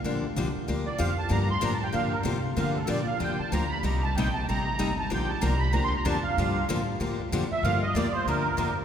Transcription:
X:1
M:4/4
L:1/8
Q:"Swing" 1/4=190
K:Gm
V:1 name="Accordion"
z4 z d f a | b c' (3b a g f B z2 | f A d f g a b =b | b a g a b3 a |
g a b =b (3_b c' b a f- | f2 z4 z =e | f e d c B3 z |]
V:2 name="Steel-string acoustic guitar"
[D,F,B,DG] z [D,F,B,DG] z [D,F,B,DG] z [D,F,B,DG] z | [D,F,B,DG] z [D,F,B,DG] z [D,F,B,DG] z [D,F,B,DG] z | [D,F,B,DG] z [D,F,B,DG] z [D,F,B,DG] z [D,F,B,DG] z | [C,G,B,EG] z [C,G,B,EG] z [C,G,B,EG] z [C,G,B,EG] z |
[D,F,B,DG] z [D,F,B,DG] z [D,F,B,DG] z [D,F,B,DG] z | [D,F,B,DG] z [D,F,B,DG] z [D,F,B,DG] z [D,F,B,DG] z | [D,F,B,DG] z [D,F,B,DG] z [D,F,B,DG] z [D,F,B,DG] z |]
V:3 name="Upright bass" clef=bass
B,,,2 C,, z D,,2 F,,2 | G,,2 A,,2 B,,2 C,2 | D,2 B,,2 F,, z D,,2 | C,,2 B,,,2 A,,,2 G,,,2 |
B,,,2 C,,2 D,,2 F,,2 | G,,2 A,,2 B,, z F,, z | G,,2 E,,2 D,,2 F,,2 |]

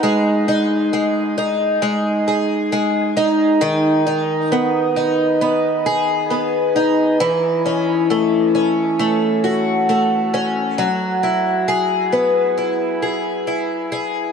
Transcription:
X:1
M:4/4
L:1/8
Q:1/4=67
K:E
V:1 name="Twelve-string acoustic guitar"
G, D G, D G, G G, D | D, D B, D B, G B, D | E, C A, C A, F A, C | F, E G B, E G E G |]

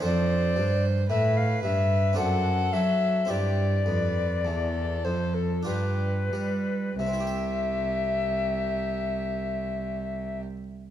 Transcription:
X:1
M:3/4
L:1/16
Q:1/4=49
K:C
V:1 name="Recorder"
d4 e f e2 ^f2 e2 | d6 c A B4 | e12 |]
V:2 name="Violin"
c4 B4 A4 | G2 B2 A4 G2 z2 | G12 |]
V:3 name="Harpsichord"
[CDA]8 [CDA]4 | [CEG]8 [DFG]4 | [C,CEGe]12 |]
V:4 name="Harpsichord" clef=bass
F,,2 G,,2 A,,2 G,,2 ^F,,2 ^F,2 | G,,2 F,,2 E,,2 F,,2 G,,2 G,2 | z12 |]
V:5 name="Cello" clef=bass
F,,2 G,,2 A,,2 G,,2 ^F,,2 ^F,2 | G,,2 F,,2 E,,2 F,,2 G,,2 G,2 | C,,12 |]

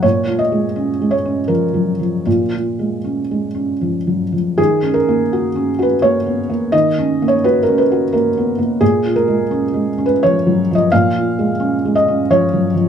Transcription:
X:1
M:3/4
L:1/16
Q:1/4=85
K:Ebm
V:1 name="Felt piano"
d2 e4 d2 B4 | F8- F2 z2 | A2 B4- B c d4 | e3 d c B c2 B4 |
A2 B4- B c d3 e | f6 e2 d4 |]
V:2 name="Felt piano"
(3B,,2 F2 A,2 (3D2 A,2 D2 (3F,2 G,2 F,2 | (3B,,2 F2 A,2 (3D2 A,2 D2 (3F,2 G,2 F,2 | (3E,2 D2 B,2 (3G2 D2 G2 (3B,2 C2 B,2 | (3E,2 D2 B,2 (3G2 D2 G2 (3B,2 C2 B,2 |
(3B,,2 F2 A,2 (3D2 A,2 D2 (3F,2 G,2 F,2 | (3B,,2 F2 A,2 (3D2 A,2 D2 (3F,2 G,2 F,2 |]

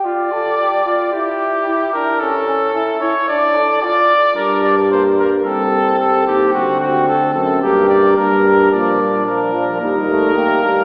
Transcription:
X:1
M:4/4
L:1/8
Q:1/4=111
K:Gm
V:1 name="Trumpet"
d4 G3 B | A3 ^c d2 d2 | B d c B A2 A G | ^F F A A G d B2 |
d2 B2 B4 |]
V:2 name="Flugelhorn"
F A G F =E2 E D | ^C C =E E D A F z | D2 B,2 C4- | C4 B,2 D2 |
D4 E2 G D |]
V:3 name="Trombone" clef=bass
z8 | z8 | z8 | z8 |
F, G, F, F, G, A, B,2 |]
V:4 name="Bass trombone" clef=bass
z8 | z8 | G,,4 C,,3 E,, | D,,3 ^F,, G,,2 G,,2 |
B,,4 E,,3 G,, |]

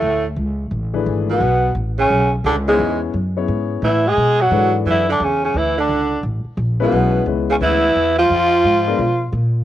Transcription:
X:1
M:4/4
L:1/8
Q:"Swing" 1/4=174
K:Bdor
V:1 name="Grand piano"
z4 z [E,A,DGB]3 | z6 z [B,CEGc]- | [B,CEGc]2 z [B,CEGc]3 z2 | z2 [E,DGAB]3 z3 |
z6 z [G,B,CEB]- | [G,B,CEB]2 [G,B,CEB]3 z3 | z3 [G,B,D^E^A] z4 |]
V:2 name="Tenor saxophone"
A, z6 B,- | B,2 z C2 z D G,- | G, z4 z E G- | G F2 z E D C C |
E D3 z3 B,- | B,2 z C E3 ^E- | ^E6 z2 |]
V:3 name="Tenor saxophone" clef=bass
A,, z6 B,,- | B,,2 z C,2 z D, G,,- | G,, z4 z E, G,- | G, F,2 z E, D, C, C, |
E, D,3 z3 B,,- | B,,2 z C, E,3 ^E,- | ^E,6 z2 |]
V:4 name="Upright bass" clef=bass
D,,2 C,,2 A,,,2 G,,,2 | B,,,2 A,,,2 B,,,2 C,,2 | E,,2 F,,2 G,,2 A,,2 | B,,2 G,,2 F,,2 E,,2 |
D,,2 C,,2 A,,, z ^A,,,2 | B,,,2 C,,2 D,,2 E,,2 | ^E,,2 G,,2 B,,2 ^A,,2 |]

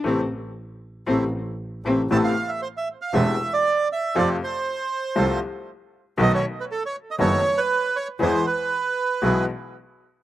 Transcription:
X:1
M:4/4
L:1/16
Q:1/4=117
K:Am
V:1 name="Bandoneon"
z16 | a f2 e c e2 f e3 d3 e2 | d2 c8 z6 | ^d ^c2 B A c2 d c3 B3 c2 |
c2 B8 z6 |]
V:2 name="Bandoneon"
[A,CE]2 z6 [A,CE]2 z4 [A,CE]2 | [B,CA]2 z6 [B,CA]2 z6 | [CFA]2 z6 [CFA]2 z6 | [B,^DA]2 z6 [B,DA]2 z6 |
[B,E^G]2 z6 [B,EG]2 z6 |]
V:3 name="Cello"
C2 z6 C2 z4 C2 | z16 | z16 | z16 |
z16 |]
V:4 name="Grand piano" clef=bass
[C,E,A,]2 z6 [C,E,A,]2 z4 [C,E,A,]2 | [A,,,A,,C,A,B,E]2 z6 [E,,,E,,C,A,B,E]2 z6 | [F,,C,F,A,F]2 z6 [C,,C,F,A,F]2 z6 | [B,,,B,,^D,A,B,^F]2 z6 [^F,,,^F,,D,A,B,F]2 z6 |
[E,,E,^G,B,^G]2 z6 [B,,,B,,E,G,B,G]2 z6 |]
V:5 name="Double bass" clef=bass
A,,,2 z6 A,,,2 z4 A,,,2 | A,,,2 z6 E,,,2 z6 | F,,2 z6 C,,2 z6 | B,,,2 z6 ^F,,,2 z6 |
E,,2 z6 B,,,2 z6 |]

